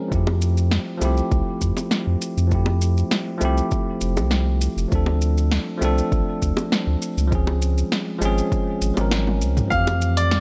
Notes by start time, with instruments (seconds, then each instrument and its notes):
Already playing: tine electric piano F3 G#3 C4 C#4 G#4 A#4
0.08 sub bass F2, tine electric piano F3 A3 C4, kick
0.12 tine electric piano E4 G4, shaker
0.27 high bongo
0.42 shaker
0.57 shaker
0.71 snare, shaker
0.97 tine electric piano F3 A3 C4
1.01 sub bass C2, tine electric piano E4 G4, high bongo, shaker
1.17 shaker
1.31 sub bass C2, kick, shaker
1.61 sub bass F2, kick, shaker
1.77 high bongo, shaker
1.91 snare, shaker
2.07 sub bass F2
2.22 shaker
2.37 sub bass F2, shaker
2.48 tine electric piano F3 A3 C4, shaker
2.52 tine electric piano E4 G4, kick
2.66 high bongo
2.81 shaker
2.97 shaker
3.11 snare, shaker
3.38 sub bass C2, tine electric piano F3 A3 C4, high bongo, shaker
3.43 tine electric piano E4 G4
3.57 shaker
3.71 kick, shaker
4.01 sub bass F1, shaker
4.17 sub bass C2, high bongo, shaker
4.31 snare, shaker
4.61 shaker
4.77 sub bass F1, shaker
4.88 tine electric piano F3 A3 C4, shaker
4.92 sub bass D2, tine electric piano D4 A4, kick
5.06 high bongo
5.22 shaker
5.38 shaker
5.51 snare, shaker
5.77 tine electric piano F3 A3 C4
5.82 sub bass C2, tine electric piano D4 A4, high bongo, shaker
5.98 shaker
6.12 sub bass A1, kick, shaker
6.42 sub bass D2, kick, shaker
6.57 high bongo, shaker
6.72 snare, shaker
6.87 sub bass D2
7.02 shaker
7.17 sub bass C#2, shaker
7.27 tine electric piano F3 G#3 C4
7.32 tine electric piano C#4 G#4, kick, shaker
7.47 high bongo
7.62 shaker
7.78 shaker
7.92 snare, shaker
8.18 sub bass G#1, tine electric piano F3 G#3 C4, high bongo, shaker
8.24 tine electric piano C#4 G#4
8.38 shaker
8.52 kick, shaker
8.81 sub bass G#1, shaker
8.94 sub bass G#1, tine electric piano F3 G#3 C4, high bongo, shaker
8.99 tine electric piano C#4 A#4
9.11 snare, high tom, shaker
9.27 high tom
9.41 sub bass C#2, shaker
9.57 mid tom, shaker
9.68 sub bass F2, tine electric piano F3 A3 C4, grand piano F5, kick, shaker
9.74 tine electric piano E3 G4
9.87 open hi-hat, high bongo
10.02 shaker
10.17 grand piano D5, open hi-hat, shaker
10.31 snare, shaker